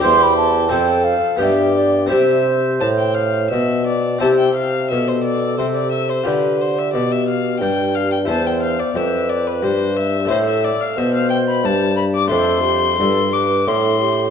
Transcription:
<<
  \new Staff \with { instrumentName = "Violin" } { \time 3/4 \key c \major \tempo 4 = 89 g'4 a'4 g'4 | e''4 a''16 g''16 f''8 e''8 d''8 | a''16 g''16 f''8 e''16 c''16 d''8 c''16 d''16 e''16 c''16 | b'8 c''16 e''16 d''16 e''16 f''8 g''8 f''16 g''16 |
a''16 g''16 f''16 d''16 e''8 d''16 b'16 c''8 e''8 | c''16 e''16 d''16 f''16 e''16 f''16 g''16 b''16 a''8 b''16 d'''16 | c'''4. d'''8 c'''4 | }
  \new Staff \with { instrumentName = "Flute" } { \time 3/4 \key c \major c'''16 b''16 a''8 g''8 f''8 e''8 d''8 | c''2~ c''8 r8 | r4 a'2 | g'2. |
c''4 b'2 | a'4 c''4. r8 | a'8 g'8 a'8 b'8 a'8 g'8 | }
  \new Staff \with { instrumentName = "Harpsichord" } { \time 3/4 \key c \major <c' g' c''>4 <c' a' c''>4 <b g'>4 | <c' e' g'>2. | <c' e' g'>2. | <f' g'>2. |
<e' c''>2. | <a e' c''>2. | <a d' d''>2. | }
  \new Staff \with { instrumentName = "Harpsichord" } { \clef bass \time 3/4 \key c \major e,4 f,8 r8 g,4 | c4 a,4 b,4 | c4 b,4 c4 | d4 b,4 g,4 |
e,4 f,4 g,4 | a,8 r8 b,4 g,4 | f,4 g,4 a,4 | }
  \new Staff \with { instrumentName = "Bassoon" } { \clef bass \time 3/4 \key c \major e,4 f,8 r8 g,4 | c4 a,4 b,4 | c4 b,4 c4 | d4 b,4 g,4 |
e,4 f,4 g,4 | a,8 r8 b,4 g,4 | f,4 g,4 a,4 | }
>>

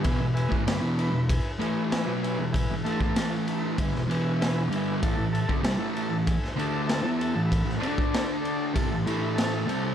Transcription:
<<
  \new Staff \with { instrumentName = "Transistor combo organ" } { \time 4/4 \key a \major \tempo 4 = 96 <b' e'' gis''>8 <b' e'' gis''>8 <b' e'' b''>8 <b' e'' b''>8 <b' e'' gis''>8 <b' e'' gis''>8 <b' e'' gis''>8 <b' e'' gis''>8 | <b' e'' gis''>8 <a' e'' a''>4 <a' e'' b''>8 <b' e'' gis''>8 <b' e'' gis''>8 <b' e'' gis''>8 <b' e'' gis''>8 | <a' e'' a''>8 <a' e'' a''>8 <a' e'' a''>8 <a' e'' a''>8 <a' e'' gis''>8 <a' e'' a''>8 <a' e'' a''>8 <a' e'' a''>8 | <a' e'' b''>8 <a' d'' a''>4 <a' d'' a''>8 <a' e'' a''>8 <a' e'' b''>8 <a' e'' a''>8 <a' e'' a''>8 | }
  \new Staff \with { instrumentName = "Distorted electric guitar" } { \clef bass \time 4/4 \key a \major <e, b,>16 <e, b,>8 <a, e>16 <g, d>16 <e, b, e>8 <e, b,>8 r16 <a, e a>8. <b, fis b>8 <e, b,>16~ | <e, b,>16 <e, b,>16 <a, e a>4. <g, d>16 <e, b,>16 <e, b, e>4 <g, d g>8 | <a, e>16 <a, e>8 <d a>16 <c g>16 <a, e a>8 <a, e>8 r16 <d a d'>8. <e b e'>8 <a, e>16~ | <a, e>16 <a, e>16 <d a d'>4. <c g>16 <a, e>16 <a, e a>4 <c g c'>8 | }
  \new DrumStaff \with { instrumentName = "Drums" } \drummode { \time 4/4 <bd cymr>8 cymr16 bd16 <cymr sn>8 cymr8 <bd cymr>8 cymr8 <cymr sn>8 cymr8 | <bd cymr>8 cymr16 bd16 <cymr sn>8 cymr8 <bd cymr>16 sn16 cymr8 <cymr sn>8 cymr8 | <bd cymr>8 cymr16 bd16 <cymr sn>8 cymr8 <bd cymr>16 sn16 cymr8 <cymr sn>8 cymr8 | <bd cymr>16 sn16 cymr16 bd16 <cymr sn>8 cymr8 <bd cymr>8 cymr8 <cymr sn>8 cymr8 | }
>>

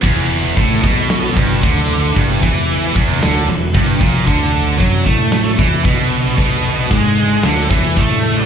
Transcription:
<<
  \new Staff \with { instrumentName = "Tonewheel organ" } { \time 4/4 \key d \lydian \tempo 4 = 113 <e' b' fis''>1~ | <e' b' fis''>1 | <d' e''>1~ | <d' e''>1 | }
  \new Staff \with { instrumentName = "Distorted electric guitar" } { \clef bass \time 4/4 \key d \lydian e,4 a,8 b,4 g,8 d4 | g,8 e4 e,8 d8 e,8 g,8 ais,8 | d4 fis8 a4 e8 b,4 | b,4 gis4 d8 e8 a4 | }
  \new Staff \with { instrumentName = "Distorted electric guitar" } { \clef bass \time 4/4 \key d \lydian e,4 a,8 b,4 g,8 d4 | g,8 e4 e,8 d8 e,8 g,8 ais,8 | d4 fis8 a4 e8 b,4 | b,4 gis4 d8 e8 a4 | }
  \new Staff \with { instrumentName = "Overdriven electric guitar" } { \clef bass \time 4/4 \key d \lydian e,4 a,8 b,4 g,8 d4 | g,8 e4 e,8 d8 e,8 g,8 ais,8 | d4 fis8 a4 e8 b,4 | b,4 gis4 d8 e8 a4 | }
  \new Staff \with { instrumentName = "Picked electric bass" } { \clef bass \time 4/4 \key d \lydian e,,4 a,,8 b,,4 g,,8 d,4 | g,,8 e,4 e,,8 d,8 e,,8 g,,8 ais,,8 | d,4 fis,8 a,4 e,8 b,,4 | b,,4 gis,4 d,8 e,8 a,4 | }
  \new DrumStaff \with { instrumentName = "Drums" } \drummode { \time 4/4 <cymc bd>8 cymc8 <cymc bd>8 <cymc bd>8 <cymc sn>8 <cymc bd>8 <cymc bd>8 cymc8 | <cymc bd>8 <cymc bd>8 cymc8 <cymc bd>8 <cymc sn>8 cymc8 <cymc bd>8 <cymc bd>8 | <cymc bd>8 cymc8 <cymc bd>8 <cymc bd>8 <cymc sn>8 <cymc bd>8 <cymc bd>8 cymc8 | <cymc bd>8 cymc8 <cymc bd>8 cymc8 <cymc sn>8 <cymc bd>8 <cymc bd>8 <cymc sn>8 | }
>>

